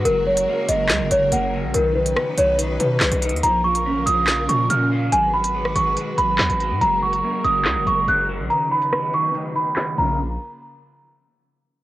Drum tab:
CC |------------------------------------------------|------------------------------------------------|------------------------------------------------|------------------------------------------------|
HH |x--------x--------x-----x-----x-----x-----------|x--------x--------x-----x-----x--------x--x-x-x-|x--------x--------x-----x-----x-----x-----------|x--------x--------x-----x-----x--------x--x-----|
CP |------------------------x-----------------------|------------------------------------x-----------|------------------------x-----------------------|------------------------------------x-----------|
SD |------------------------o-----------------------|------------r-----------------------o-----------|------------------------o-----------------------|---------------r--------------------o-----------|

CC |------------------------------------------------|------------------------------------------x-----|------------------------------------------------|
HH |x--------x--------x-----x-----x-----x-----------|x--------x--------x-----x-----x--------x--------|------------------------------------------------|
CP |------------------------x-----------------------|------------------------------------x-----------|------------------------------------------------|
SD |------------------------o-----------------------|------------r-----------------------o-----------|------------------------------------------------|